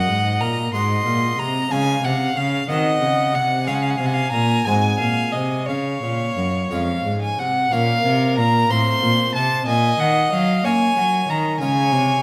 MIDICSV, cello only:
0, 0, Header, 1, 2, 480
1, 0, Start_track
1, 0, Key_signature, -5, "major"
1, 0, Tempo, 650759
1, 1262, Time_signature, 6, 3, 24, 8
1, 2704, Tempo, 672646
1, 5591, Key_signature, -5, "minor"
1, 6064, Tempo, 645161
1, 8929, End_track
2, 0, Start_track
2, 0, Title_t, "Cello"
2, 0, Program_c, 0, 42
2, 65, Note_on_c, 0, 44, 77
2, 298, Note_on_c, 0, 46, 74
2, 309, Note_off_c, 0, 44, 0
2, 537, Note_off_c, 0, 46, 0
2, 541, Note_on_c, 0, 44, 83
2, 773, Note_off_c, 0, 44, 0
2, 777, Note_on_c, 0, 46, 70
2, 1012, Note_off_c, 0, 46, 0
2, 1016, Note_on_c, 0, 48, 70
2, 1254, Note_off_c, 0, 48, 0
2, 1261, Note_on_c, 0, 49, 89
2, 1494, Note_off_c, 0, 49, 0
2, 1498, Note_on_c, 0, 48, 80
2, 1735, Note_off_c, 0, 48, 0
2, 1743, Note_on_c, 0, 49, 82
2, 1978, Note_off_c, 0, 49, 0
2, 1986, Note_on_c, 0, 51, 84
2, 2220, Note_off_c, 0, 51, 0
2, 2226, Note_on_c, 0, 49, 72
2, 2471, Note_on_c, 0, 48, 71
2, 2482, Note_off_c, 0, 49, 0
2, 2710, Note_on_c, 0, 49, 84
2, 2721, Note_off_c, 0, 48, 0
2, 2940, Note_off_c, 0, 49, 0
2, 2945, Note_on_c, 0, 48, 82
2, 3175, Note_off_c, 0, 48, 0
2, 3183, Note_on_c, 0, 46, 82
2, 3414, Note_off_c, 0, 46, 0
2, 3420, Note_on_c, 0, 44, 79
2, 3652, Note_off_c, 0, 44, 0
2, 3660, Note_on_c, 0, 46, 60
2, 3894, Note_off_c, 0, 46, 0
2, 3897, Note_on_c, 0, 48, 68
2, 4147, Note_on_c, 0, 49, 74
2, 4158, Note_off_c, 0, 48, 0
2, 4389, Note_off_c, 0, 49, 0
2, 4392, Note_on_c, 0, 46, 69
2, 4626, Note_off_c, 0, 46, 0
2, 4631, Note_on_c, 0, 42, 65
2, 4866, Note_off_c, 0, 42, 0
2, 4874, Note_on_c, 0, 41, 67
2, 5104, Note_off_c, 0, 41, 0
2, 5108, Note_on_c, 0, 44, 59
2, 5346, Note_off_c, 0, 44, 0
2, 5357, Note_on_c, 0, 48, 61
2, 5588, Note_off_c, 0, 48, 0
2, 5594, Note_on_c, 0, 46, 91
2, 5813, Note_off_c, 0, 46, 0
2, 5830, Note_on_c, 0, 48, 89
2, 6062, Note_on_c, 0, 46, 86
2, 6073, Note_off_c, 0, 48, 0
2, 6300, Note_off_c, 0, 46, 0
2, 6305, Note_on_c, 0, 45, 81
2, 6539, Note_off_c, 0, 45, 0
2, 6546, Note_on_c, 0, 46, 70
2, 6781, Note_off_c, 0, 46, 0
2, 6787, Note_on_c, 0, 48, 72
2, 7021, Note_off_c, 0, 48, 0
2, 7026, Note_on_c, 0, 46, 86
2, 7263, Note_off_c, 0, 46, 0
2, 7267, Note_on_c, 0, 51, 78
2, 7504, Note_off_c, 0, 51, 0
2, 7511, Note_on_c, 0, 54, 81
2, 7746, Note_off_c, 0, 54, 0
2, 7750, Note_on_c, 0, 58, 76
2, 7984, Note_off_c, 0, 58, 0
2, 7991, Note_on_c, 0, 54, 70
2, 8223, Note_off_c, 0, 54, 0
2, 8234, Note_on_c, 0, 51, 67
2, 8459, Note_off_c, 0, 51, 0
2, 8463, Note_on_c, 0, 49, 82
2, 8702, Note_on_c, 0, 48, 81
2, 8713, Note_off_c, 0, 49, 0
2, 8929, Note_off_c, 0, 48, 0
2, 8929, End_track
0, 0, End_of_file